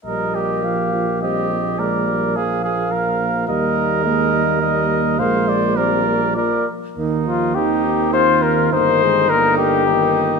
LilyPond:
<<
  \new Staff \with { instrumentName = "Cornet" } { \time 3/4 \key ees \major \tempo 4 = 104 ees''4 f''4 ees''4 | d''4 f''2 | ees''4 ees''4 ees''4 | f''8 d''8 d''4 d''8 r8 |
r8 f'8 g'4 c''8 bes'8 | c''4 bes'8 g'4. | }
  \new Staff \with { instrumentName = "Trumpet" } { \time 3/4 \key ees \major bes'8 g'4. g'4 | bes'4 aes'8 aes'8 bes'4 | bes'2. | c''4 bes'4 bes'8 r8 |
ees'4 ees'4 f'4 | ees'2 ees'4 | }
  \new Staff \with { instrumentName = "French horn" } { \time 3/4 \key ees \major bes2 c'4 | bes2. | bes4 aes8 g8 g4 | bes4 c'8 bes8 bes8 r8 |
bes4 c'2 | bes8 aes8 bes4 bes4 | }
  \new Staff \with { instrumentName = "Euphonium" } { \clef bass \time 3/4 \key ees \major g4 f8 f8 g8 bes8 | aes8 g8 f4 f4 | g4 bes2 | aes4 g4 f8 r8 |
ees8 f8 ees8 ees4.~ | ees4 d4 ees4 | }
  \new Staff \with { instrumentName = "Tuba" } { \clef bass \time 3/4 \key ees \major bes,,2.~ | bes,,2. | ees,2. | bes,,2~ bes,,8 r8 |
ees,2. | g,,2. | }
>>